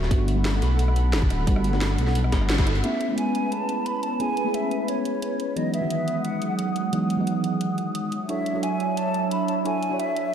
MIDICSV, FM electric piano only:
0, 0, Header, 1, 2, 480
1, 0, Start_track
1, 0, Key_signature, 3, "major"
1, 0, Tempo, 340909
1, 156, Time_signature, 4, 2, 24, 8
1, 14564, End_track
2, 0, Start_track
2, 0, Title_t, "FM electric piano"
2, 0, Program_c, 0, 5
2, 0, Control_c, 0, 64, 127
2, 0, Note_on_c, 0, 62, 78
2, 0, Note_on_c, 0, 64, 76
2, 0, Note_on_c, 0, 66, 74
2, 0, Note_on_c, 0, 69, 74
2, 0, Note_on_c, 0, 73, 87
2, 144, Note_on_c, 0, 55, 75
2, 150, Note_on_c, 0, 57, 69
2, 154, Note_on_c, 0, 59, 69
2, 161, Note_off_c, 0, 62, 0
2, 161, Note_on_c, 0, 62, 68
2, 166, Note_off_c, 0, 66, 0
2, 166, Note_on_c, 0, 66, 84
2, 172, Control_c, 0, 64, 0
2, 176, Note_off_c, 0, 69, 0
2, 179, Note_off_c, 0, 64, 0
2, 183, Note_off_c, 0, 73, 0
2, 410, Control_c, 0, 64, 127
2, 477, Note_off_c, 0, 55, 0
2, 488, Note_off_c, 0, 57, 0
2, 490, Note_off_c, 0, 59, 0
2, 493, Note_off_c, 0, 62, 0
2, 494, Note_on_c, 0, 55, 73
2, 496, Note_off_c, 0, 66, 0
2, 505, Note_on_c, 0, 57, 66
2, 517, Note_on_c, 0, 59, 68
2, 528, Note_on_c, 0, 62, 67
2, 541, Note_on_c, 0, 66, 80
2, 2035, Note_off_c, 0, 55, 0
2, 2040, Note_off_c, 0, 57, 0
2, 2046, Note_off_c, 0, 59, 0
2, 2052, Note_off_c, 0, 62, 0
2, 2058, Note_off_c, 0, 66, 0
2, 2059, Note_on_c, 0, 55, 82
2, 2065, Note_on_c, 0, 57, 75
2, 2070, Note_on_c, 0, 59, 75
2, 2077, Note_on_c, 0, 62, 73
2, 2081, Note_on_c, 0, 66, 90
2, 2391, Note_off_c, 0, 55, 0
2, 2405, Note_off_c, 0, 57, 0
2, 2408, Note_off_c, 0, 59, 0
2, 2408, Note_on_c, 0, 55, 82
2, 2411, Note_off_c, 0, 62, 0
2, 2414, Note_off_c, 0, 66, 0
2, 2421, Note_on_c, 0, 57, 76
2, 2433, Note_on_c, 0, 59, 76
2, 2445, Note_on_c, 0, 62, 76
2, 2458, Note_on_c, 0, 66, 92
2, 3952, Note_off_c, 0, 55, 0
2, 3958, Note_off_c, 0, 57, 0
2, 3964, Note_off_c, 0, 59, 0
2, 3970, Note_off_c, 0, 62, 0
2, 3977, Note_off_c, 0, 66, 0
2, 3985, Note_on_c, 0, 57, 67
2, 3990, Note_on_c, 0, 59, 61
2, 3997, Note_on_c, 0, 61, 60
2, 4002, Note_on_c, 0, 64, 61
2, 4009, Note_on_c, 0, 68, 74
2, 4014, Control_c, 0, 64, 0
2, 4260, Control_c, 0, 64, 127
2, 4321, Note_off_c, 0, 57, 0
2, 4328, Note_off_c, 0, 59, 0
2, 4331, Note_off_c, 0, 61, 0
2, 4334, Note_off_c, 0, 64, 0
2, 4338, Note_off_c, 0, 68, 0
2, 4338, Note_on_c, 0, 57, 65
2, 4350, Note_on_c, 0, 59, 59
2, 4362, Note_on_c, 0, 61, 59
2, 4376, Note_on_c, 0, 64, 60
2, 4387, Note_on_c, 0, 56, 73
2, 5877, Note_off_c, 0, 57, 0
2, 5883, Note_off_c, 0, 59, 0
2, 5889, Note_off_c, 0, 61, 0
2, 5896, Note_off_c, 0, 64, 0
2, 5901, Note_off_c, 0, 56, 0
2, 5904, Note_on_c, 0, 57, 73
2, 5909, Note_on_c, 0, 59, 66
2, 5915, Note_on_c, 0, 61, 66
2, 5921, Note_on_c, 0, 64, 67
2, 5928, Note_on_c, 0, 68, 80
2, 6237, Note_off_c, 0, 57, 0
2, 6247, Note_off_c, 0, 59, 0
2, 6251, Note_off_c, 0, 61, 0
2, 6253, Note_off_c, 0, 64, 0
2, 6254, Note_on_c, 0, 57, 74
2, 6257, Note_off_c, 0, 68, 0
2, 6267, Note_on_c, 0, 59, 66
2, 6279, Note_on_c, 0, 61, 68
2, 6291, Note_on_c, 0, 64, 66
2, 6303, Note_on_c, 0, 68, 81
2, 7795, Note_off_c, 0, 57, 0
2, 7801, Note_off_c, 0, 59, 0
2, 7808, Note_off_c, 0, 61, 0
2, 7813, Note_off_c, 0, 64, 0
2, 7819, Note_off_c, 0, 68, 0
2, 7823, Note_on_c, 0, 52, 68
2, 7830, Note_on_c, 0, 54, 63
2, 7836, Note_on_c, 0, 56, 62
2, 7842, Note_on_c, 0, 59, 61
2, 7847, Note_on_c, 0, 63, 76
2, 7855, Control_c, 0, 64, 0
2, 8056, Control_c, 0, 64, 127
2, 8160, Note_off_c, 0, 52, 0
2, 8168, Note_off_c, 0, 54, 0
2, 8171, Note_off_c, 0, 56, 0
2, 8174, Note_off_c, 0, 59, 0
2, 8177, Note_off_c, 0, 63, 0
2, 8177, Note_on_c, 0, 52, 68
2, 8190, Note_on_c, 0, 54, 62
2, 8201, Note_on_c, 0, 56, 62
2, 8213, Note_on_c, 0, 59, 60
2, 8225, Note_on_c, 0, 51, 75
2, 9716, Note_off_c, 0, 52, 0
2, 9723, Note_off_c, 0, 54, 0
2, 9728, Note_off_c, 0, 56, 0
2, 9734, Note_off_c, 0, 59, 0
2, 9740, Note_off_c, 0, 51, 0
2, 9744, Note_on_c, 0, 52, 73
2, 9750, Note_on_c, 0, 54, 68
2, 9755, Note_on_c, 0, 56, 67
2, 9762, Note_on_c, 0, 59, 65
2, 9767, Note_on_c, 0, 63, 78
2, 10075, Note_off_c, 0, 52, 0
2, 10088, Note_off_c, 0, 54, 0
2, 10090, Note_off_c, 0, 56, 0
2, 10092, Note_on_c, 0, 52, 74
2, 10094, Note_off_c, 0, 59, 0
2, 10096, Note_off_c, 0, 63, 0
2, 10105, Note_on_c, 0, 54, 65
2, 10116, Note_on_c, 0, 56, 67
2, 10128, Note_on_c, 0, 59, 67
2, 10140, Note_on_c, 0, 63, 82
2, 11407, Note_off_c, 0, 52, 0
2, 11414, Note_off_c, 0, 54, 0
2, 11420, Note_off_c, 0, 56, 0
2, 11426, Note_off_c, 0, 59, 0
2, 11432, Note_off_c, 0, 63, 0
2, 11457, Control_c, 0, 64, 0
2, 11664, Note_on_c, 0, 62, 68
2, 11670, Note_on_c, 0, 64, 63
2, 11676, Note_on_c, 0, 66, 63
2, 11682, Note_on_c, 0, 69, 61
2, 11689, Note_on_c, 0, 73, 74
2, 11717, Control_c, 0, 64, 127
2, 11997, Note_off_c, 0, 62, 0
2, 12008, Note_off_c, 0, 64, 0
2, 12011, Note_off_c, 0, 66, 0
2, 12014, Note_off_c, 0, 69, 0
2, 12014, Note_on_c, 0, 62, 67
2, 12017, Note_off_c, 0, 73, 0
2, 12027, Note_on_c, 0, 64, 61
2, 12038, Note_on_c, 0, 66, 61
2, 12051, Note_on_c, 0, 69, 60
2, 12063, Note_on_c, 0, 73, 73
2, 13555, Note_off_c, 0, 62, 0
2, 13561, Note_off_c, 0, 64, 0
2, 13567, Note_off_c, 0, 66, 0
2, 13573, Note_off_c, 0, 69, 0
2, 13579, Note_off_c, 0, 73, 0
2, 13583, Note_on_c, 0, 62, 74
2, 13588, Note_on_c, 0, 64, 65
2, 13594, Note_on_c, 0, 66, 66
2, 13600, Note_on_c, 0, 69, 66
2, 13608, Note_on_c, 0, 73, 80
2, 13919, Note_off_c, 0, 62, 0
2, 13927, Note_off_c, 0, 64, 0
2, 13930, Note_off_c, 0, 66, 0
2, 13933, Note_off_c, 0, 69, 0
2, 13936, Note_on_c, 0, 62, 74
2, 13937, Note_off_c, 0, 73, 0
2, 13946, Note_on_c, 0, 64, 67
2, 13959, Note_on_c, 0, 66, 67
2, 13971, Note_on_c, 0, 69, 67
2, 13983, Note_on_c, 0, 73, 80
2, 14564, Note_off_c, 0, 62, 0
2, 14564, Note_off_c, 0, 64, 0
2, 14564, Note_off_c, 0, 66, 0
2, 14564, Note_off_c, 0, 69, 0
2, 14564, Note_off_c, 0, 73, 0
2, 14564, End_track
0, 0, End_of_file